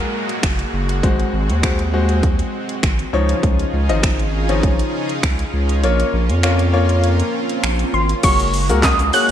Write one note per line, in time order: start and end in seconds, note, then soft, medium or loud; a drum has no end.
0.00 0.28 G#3 medium
0.00 1.01 G#3 medium
0.00 1.01 A#3 medium
0.00 0.28 F#4 medium
0.00 3.09 F#4 medium
0.00 0.28 A#4 medium
0.00 downlifter medium
0.29 closed hi-hat medium
0.43 0.64 F#1 medium
0.43 finger snap loud
0.43 kick loud
0.43 closed hi-hat medium
0.59 closed hi-hat medium
0.73 1.05 F#1 medium
0.89 closed hi-hat medium
1.03 1.24 G#1 loud
1.03 1.33 G#3 medium
1.03 3.11 G#3 medium
1.03 3.11 C4 medium
1.03 1.33 F#4 medium
1.03 1.33 C5 loud
1.03 kick loud
1.03 closed hi-hat medium
1.20 closed hi-hat soft
1.33 1.51 G#1 loud
1.49 2.43 D#2 medium
1.49 closed hi-hat medium
1.63 1.79 G#3 medium
1.63 1.79 F#4 medium
1.63 1.79 C5 medium
1.63 finger snap loud
1.63 kick loud
1.63 closed hi-hat medium
1.79 closed hi-hat soft
1.93 2.52 G#3 medium
1.93 2.52 F#4 medium
1.93 2.52 C5 loud
2.09 closed hi-hat soft
2.23 kick loud
2.23 closed hi-hat medium
2.39 closed hi-hat medium
2.69 closed hi-hat medium
2.83 3.04 G#1 medium
2.83 finger snap loud
2.83 kick loud
2.83 closed hi-hat medium
2.99 closed hi-hat soft
3.13 3.34 C#2 medium
3.13 5.80 C#3 medium
3.13 3.73 F3 medium
3.13 8.19 C#4 medium
3.13 5.81 D#4 medium
3.13 3.73 D#4 medium
3.13 5.81 F4 medium
3.13 5.81 G#4 medium
3.13 3.73 C#5 loud
3.29 closed hi-hat medium
3.43 3.64 C#2 loud
3.43 kick loud
3.43 closed hi-hat medium
3.59 closed hi-hat soft
3.73 3.91 C#2 loud
3.89 4.83 G#1 medium
3.89 4.19 F3 medium
3.89 4.19 D#4 medium
3.89 4.19 D#5 loud
3.89 closed hi-hat medium
4.03 finger snap loud
4.03 kick loud
4.03 closed hi-hat medium
4.19 closed hi-hat soft
4.49 5.08 F3 medium
4.49 5.08 D#4 medium
4.49 5.08 C#5 medium
4.49 closed hi-hat medium
4.63 kick loud
4.63 closed hi-hat medium
4.79 closed hi-hat medium
5.09 closed hi-hat medium
5.23 5.44 C#2 medium
5.23 finger snap loud
5.23 kick loud
5.23 closed hi-hat medium
5.39 closed hi-hat medium
5.53 5.85 C#2 medium
5.69 closed hi-hat medium
5.83 6.04 A#1 loud
5.83 6.13 A#3 medium
5.83 8.21 A#3 medium
5.83 8.21 F4 medium
5.83 6.13 F4 medium
5.83 6.13 C#5 loud
5.83 closed hi-hat medium
5.83 swell medium
6.00 closed hi-hat soft
6.13 6.31 A#1 medium
6.29 7.23 F2 medium
6.29 closed hi-hat medium
6.43 6.59 A#3 medium
6.43 6.59 F4 medium
6.43 6.59 C#5 loud
6.43 finger snap loud
6.43 closed hi-hat medium
6.59 closed hi-hat soft
6.73 7.32 A#3 medium
6.73 7.32 F4 medium
6.73 7.32 C#5 loud
6.89 closed hi-hat soft
7.04 closed hi-hat medium
7.20 closed hi-hat medium
7.49 closed hi-hat medium
7.64 7.84 A#1 loud
7.64 finger snap loud
7.64 closed hi-hat medium
7.79 closed hi-hat medium
7.93 8.14 G#1 medium
7.93 8.25 C6 medium
8.09 closed hi-hat medium
8.23 8.71 F#1 loud
8.23 9.31 G#3 medium
8.23 8.46 A#3 medium
8.23 9.31 A#3 medium
8.23 9.31 F#4 medium
8.23 8.46 F#4 medium
8.23 8.46 G#4 medium
8.23 8.46 C#5 medium
8.23 8.85 C#6 loud
8.23 kick loud
8.23 closed hi-hat medium
8.23 crash loud
8.23 shaker medium
8.39 closed hi-hat soft
8.39 shaker medium
8.39 shaker soft
8.54 open hi-hat medium
8.54 shaker soft
8.69 9.11 C#2 medium
8.69 8.91 A#3 medium
8.69 8.91 F#4 medium
8.69 8.91 G#4 medium
8.69 8.91 A#4 medium
8.69 closed hi-hat medium
8.69 shaker soft
8.69 shaker medium
8.83 9.14 D#6 medium
8.83 kick loud
8.83 snare loud
8.83 clap loud
8.83 closed hi-hat medium
8.83 shaker medium
8.99 closed hi-hat medium
8.99 shaker medium
9.13 9.31 A#3 medium
9.13 9.31 F#4 medium
9.13 9.31 G#4 medium
9.13 9.31 C#5 medium
9.13 9.31 F#6 loud
9.13 open hi-hat medium
9.13 shaker medium